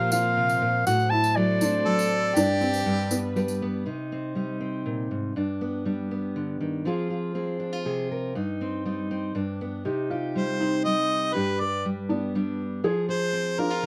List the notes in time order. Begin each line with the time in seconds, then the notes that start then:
Already playing: A#2 F3 A#3 F4 G4 A#4 C5 F5
0.12 C4 F4 F5, tambourine
0.37 C3
0.49 tambourine
0.62 A#2
0.86 A2 F#3 D4 F#4 C5 F#5, tambourine
1.00 tambourine
1.10 E4 A5
1.24 tambourine
1.36 F#3 A4 D5
1.61 C4 D4, tambourine
1.86 F#3 A4
1.99 tambourine
2.35 G2 G3 D4 G4, tambourine
2.61 C4, tambourine
2.74 tambourine
2.86 G2 B4
3.11 B3, tambourine
3.36 G3 B4, tambourine
3.48 tambourine
3.62 B3
3.86 C3 D#4
4.12 C4
4.35 G3 D#4
4.60 C4
4.86 A#2
5.11 G#2
5.36 G2 D4
5.61 B3
5.85 G3 D4
6.11 B3
6.36 D3
6.60 D#3
6.85 F3 C4 F4 G#4
7.10 F4
7.35 C4 G#4
7.60 D4
7.73 F4
7.85 C3 G#4
8.11 A#4
8.35 G2 D#4
8.61 C4
8.85 G3 D#4
9.11 C4
9.35 G2 D4
9.61 B3
9.85 C3 D#4 G4
10.10 F4 G4
10.35 G3 C5
10.60 C4 D#4
10.85 G3 D#4 D#5
11.34 G2 D4 G4 B4
11.60 B4 D5
11.85 G3
12.09 B3 D4
12.35 G3 D4
12.84 F3 G#4
13.09 G#4 C5
13.33 C4
13.59 D4 F4 A#4
13.70 F4
13.83 D#3